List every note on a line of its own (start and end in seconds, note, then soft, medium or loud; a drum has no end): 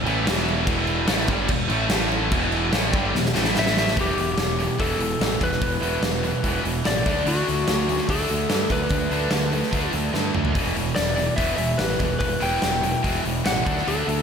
0.03 0.25 A1 loud
0.03 0.24 A2 loud
0.03 0.24 E3 loud
0.03 0.25 A3 loud
0.03 crash medium
0.25 0.65 E1 medium
0.25 0.64 E2 medium
0.25 0.64 B2 loud
0.25 0.65 E3 loud
0.25 snare loud
0.25 crash medium
0.48 crash medium
0.65 1.06 E1 medium
0.65 1.07 E2 loud
0.65 1.06 B2 loud
0.65 1.05 E3 loud
0.65 kick loud
0.65 crash medium
0.87 crash medium
1.06 1.27 A1 medium
1.06 1.28 A2 loud
1.06 1.28 E3 medium
1.06 1.28 A3 loud
1.06 snare loud
1.06 crash medium
1.27 1.48 G1 loud
1.27 1.47 G2 medium
1.27 1.47 D3 loud
1.27 1.49 G3 loud
1.27 kick loud
1.27 crash medium
1.47 1.69 E1 medium
1.47 1.65 E2 medium
1.47 1.65 B2 medium
1.47 kick medium
1.47 crash medium
1.68 1.89 A1 loud
1.68 1.88 A2 loud
1.68 1.89 E3 loud
1.68 1.89 A3 loud
1.68 crash medium
1.89 2.29 A1 loud
1.89 2.31 A2 medium
1.89 2.31 E3 loud
1.89 2.31 A3 loud
1.89 snare loud
1.89 crash medium
2.12 crash medium
2.31 2.70 E1 loud
2.31 2.73 E2 loud
2.31 2.71 B2 loud
2.31 2.71 E3 loud
2.31 kick loud
2.31 crash medium
2.52 crash medium
2.71 2.92 A1 medium
2.71 2.92 A2 medium
2.71 2.92 E3 loud
2.71 2.93 A3 loud
2.71 snare loud
2.71 crash medium
2.91 3.12 G1 medium
2.91 3.13 G2 loud
2.91 3.13 D3 loud
2.91 3.13 G3 loud
2.91 kick loud
2.91 crash medium
3.14 3.34 E1 medium
3.14 3.31 E2 medium
3.14 3.31 B2 medium
3.14 snare medium
3.25 snare medium
3.34 3.55 A1 medium
3.34 3.53 A2 loud
3.34 3.53 E3 loud
3.34 3.54 A3 medium
3.34 snare medium
3.45 snare medium
3.54 3.95 A1 loud
3.54 3.96 A2 medium
3.54 3.95 E3 loud
3.54 3.96 A3 medium
3.54 snare medium
3.59 3.77 E5 loud
3.66 snare medium
3.77 3.97 E5 loud
3.77 snare loud
3.88 snare loud
3.96 4.12 E1 medium
3.96 4.16 E2 medium
3.96 4.15 B2 medium
3.96 4.16 E3 medium
3.96 kick loud
3.96 open hi-hat medium
4.01 4.18 E3 medium
4.01 4.80 G4 medium
4.16 4.32 E1 medium
4.16 4.36 E2 medium
4.16 4.35 B2 medium
4.16 4.37 E3 medium
4.16 open hi-hat medium
4.36 4.67 E1 medium
4.36 4.55 E2 medium
4.36 4.55 B2 medium
4.36 4.55 E3 medium
4.36 snare loud
4.36 open hi-hat medium
4.56 4.77 E2 medium
4.56 4.78 B2 medium
4.56 4.78 E3 medium
4.56 open hi-hat medium
4.60 4.78 E2 medium
4.60 4.78 B2 medium
4.78 4.95 E1 medium
4.78 4.97 E2 medium
4.78 4.98 B2 medium
4.78 4.98 E3 medium
4.78 5.37 A4 medium
4.78 kick medium
4.78 open hi-hat medium
4.98 5.14 E1 medium
4.98 5.19 E2 medium
4.98 5.19 B2 loud
4.98 5.20 E3 loud
4.98 open hi-hat medium
5.20 5.36 A1 medium
5.20 5.39 E2 medium
5.20 5.39 B2 medium
5.20 5.40 E3 medium
5.20 snare loud
5.20 open hi-hat medium
5.40 5.56 E1 medium
5.40 5.60 E2 medium
5.40 5.60 B2 medium
5.40 5.61 E3 medium
5.40 6.62 B4 loud
5.40 kick medium
5.40 open hi-hat medium
5.52 snare soft
5.61 5.77 E1 medium
5.61 5.81 E2 medium
5.61 5.82 B2 medium
5.61 5.83 E3 loud
5.61 kick loud
5.61 open hi-hat medium
5.81 5.97 E1 medium
5.81 6.01 E2 medium
5.81 6.02 B2 medium
5.81 6.02 E3 medium
5.81 open hi-hat medium
6.01 6.32 E1 medium
6.01 6.22 E2 medium
6.01 6.23 B2 medium
6.01 6.24 E3 medium
6.01 snare loud
6.01 open hi-hat medium
6.24 6.42 E2 medium
6.24 6.42 B2 medium
6.24 6.43 E3 loud
6.24 open hi-hat soft
6.43 6.59 E1 medium
6.43 6.62 E2 medium
6.43 6.63 B2 medium
6.43 6.64 E3 medium
6.43 kick medium
6.43 open hi-hat medium
6.64 6.80 E1 medium
6.64 6.83 E2 medium
6.64 6.84 B2 medium
6.64 6.84 E3 loud
6.64 open hi-hat medium
6.84 7.01 A1 medium
6.84 7.04 E2 medium
6.84 7.04 B2 medium
6.84 7.04 E3 medium
6.84 7.29 D5 medium
6.84 snare loud
6.84 open hi-hat medium
7.04 7.21 D2 medium
7.04 7.23 D3 medium
7.04 7.24 A3 medium
7.04 7.24 D4 medium
7.04 kick loud
7.04 open hi-hat medium
7.24 7.41 D2 medium
7.24 7.42 D3 medium
7.24 7.42 A3 loud
7.24 7.43 D4 loud
7.24 8.10 F#4 medium
7.24 open hi-hat medium
7.42 7.63 D3 medium
7.42 7.64 A3 medium
7.42 7.64 D4 medium
7.48 7.63 D2 medium
7.48 7.66 D3 medium
7.48 7.66 A3 medium
7.48 open hi-hat medium
7.63 7.84 D3 medium
7.63 7.85 A3 medium
7.63 7.86 D4 medium
7.68 7.99 D2 medium
7.68 7.87 D3 medium
7.68 7.87 A3 medium
7.68 snare loud
7.68 open hi-hat medium
7.85 8.06 D3 medium
7.85 8.06 A3 medium
7.85 8.07 D4 medium
7.89 8.07 D3 medium
7.89 open hi-hat medium
7.98 snare soft
8.07 8.24 D2 medium
8.07 8.27 D3 medium
8.07 8.28 A3 medium
8.07 8.29 D4 medium
8.07 8.72 A4 medium
8.07 kick medium
8.07 open hi-hat medium
8.29 8.45 D2 medium
8.29 8.48 D3 medium
8.29 8.49 A3 loud
8.29 8.49 D4 loud
8.29 open hi-hat medium
8.49 8.65 G2 medium
8.49 8.68 D3 medium
8.49 8.69 A3 medium
8.49 8.69 D4 medium
8.49 snare loud
8.49 open hi-hat medium
8.70 8.86 D2 medium
8.70 8.88 D3 medium
8.70 8.88 A3 medium
8.70 8.88 D4 medium
8.70 9.91 B4 medium
8.70 kick medium
8.70 open hi-hat medium
8.89 9.06 D2 medium
8.89 9.10 D3 medium
8.89 9.11 A3 loud
8.89 9.11 D4 loud
8.89 kick loud
8.89 open hi-hat medium
9.11 9.26 D2 medium
9.11 9.30 D3 medium
9.11 9.30 A3 medium
9.11 9.31 D4 medium
9.11 open hi-hat soft
9.30 9.62 D2 medium
9.30 9.53 D3 medium
9.30 9.53 A3 medium
9.30 9.52 D4 loud
9.30 snare loud
9.30 open hi-hat medium
9.53 9.72 D3 medium
9.53 9.72 A3 loud
9.53 9.73 D4 loud
9.53 open hi-hat medium
9.63 snare soft
9.72 9.88 D2 medium
9.72 9.94 D3 medium
9.72 9.94 A3 medium
9.72 9.94 D4 medium
9.72 kick medium
9.72 open hi-hat medium
9.93 10.09 D2 medium
9.93 10.14 D3 medium
9.93 10.14 A3 loud
9.93 10.15 D4 loud
9.93 open hi-hat medium
10.14 10.30 G2 medium
10.14 10.35 D3 medium
10.14 10.35 A3 medium
10.14 10.36 D4 medium
10.14 snare medium
10.34 10.51 D2 medium
10.34 10.55 D3 medium
10.34 10.56 A3 medium
10.34 10.56 D4 medium
10.34 mid tom medium
10.45 floor tom medium
10.55 10.71 E1 medium
10.55 10.76 E2 loud
10.55 10.76 B2 medium
10.55 10.77 E3 loud
10.55 kick loud
10.55 open hi-hat medium
10.76 10.92 E1 medium
10.76 10.97 E2 medium
10.76 10.97 B2 medium
10.76 10.98 E3 medium
10.76 open hi-hat medium
10.96 11.28 E1 medium
10.96 11.17 E2 medium
10.96 11.17 B2 medium
10.96 11.18 E3 medium
10.96 11.14 D5 medium
10.96 snare loud
10.96 open hi-hat medium
11.15 11.36 E2 medium
11.15 11.36 B2 medium
11.15 11.37 E3 loud
11.15 11.36 D5 medium
11.15 open hi-hat medium
11.36 11.53 E1 medium
11.36 11.57 E2 medium
11.36 11.57 B2 medium
11.36 11.57 E3 medium
11.36 11.55 E5 medium
11.36 kick medium
11.36 open hi-hat medium
11.57 11.73 E1 medium
11.57 11.77 E2 medium
11.57 11.78 B2 medium
11.57 11.78 E3 medium
11.57 11.79 E5 medium
11.57 open hi-hat medium
11.78 11.95 A1 medium
11.78 11.99 E2 medium
11.78 12.00 B2 medium
11.78 12.00 E3 medium
11.78 12.18 B4 medium
11.78 snare loud
11.78 open hi-hat medium
11.99 12.15 E1 medium
11.99 12.19 E2 medium
11.99 12.20 B2 medium
11.99 12.21 E3 medium
11.99 kick medium
11.99 open hi-hat medium
12.19 12.36 E1 loud
12.19 12.42 E2 medium
12.19 12.42 B2 medium
12.19 12.43 E3 loud
12.19 12.41 B4 medium
12.19 kick loud
12.19 open hi-hat medium
12.41 12.57 E1 medium
12.41 12.62 E2 medium
12.41 12.63 B2 medium
12.41 12.64 E3 medium
12.41 13.21 G5 loud
12.41 open hi-hat medium
12.62 12.94 E1 medium
12.62 12.84 E2 medium
12.62 12.84 B2 medium
12.62 12.85 E3 medium
12.62 snare loud
12.62 open hi-hat medium
12.83 13.04 E2 medium
12.83 13.04 B2 medium
12.83 13.04 E3 loud
12.83 open hi-hat medium
13.04 13.19 E1 medium
13.04 13.23 E2 medium
13.04 13.24 B2 medium
13.04 13.24 E3 medium
13.04 kick medium
13.04 open hi-hat medium
13.24 13.40 E1 medium
13.24 13.45 E2 medium
13.24 13.46 B2 loud
13.24 13.46 E3 loud
13.24 open hi-hat medium
13.46 13.61 A1 medium
13.46 13.65 E2 medium
13.46 13.66 B2 medium
13.46 13.66 E3 loud
13.46 13.89 F#5 medium
13.46 snare loud
13.46 open hi-hat medium
13.66 13.81 D2 medium
13.66 13.86 D3 medium
13.66 13.87 A3 medium
13.66 13.87 D4 loud
13.66 kick loud
13.66 open hi-hat medium
13.78 snare soft
13.87 14.02 D2 medium
13.87 14.07 D3 medium
13.87 14.07 A3 loud
13.87 14.09 D4 loud
13.87 14.22 A4 medium
13.87 open hi-hat medium
14.07 14.22 D2 medium
14.07 14.22 D3 medium
14.07 14.22 A3 medium
14.07 14.22 D4 medium
14.07 open hi-hat medium